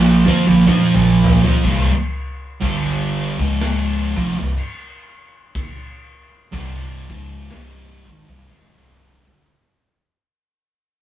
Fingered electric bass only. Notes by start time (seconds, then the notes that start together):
Already playing: A#1
0.26 F2
0.47 A#1
0.66 F2
0.95 A#1
1.44 F2
1.65 C1
2.62 G1
3.39 C#1
4.17 F1
4.38 C1
6.54 C1
7.11 C#1
7.53 C1
8.08 G#1
8.28 C1
8.50 G#1
8.79 C1
9.27 G1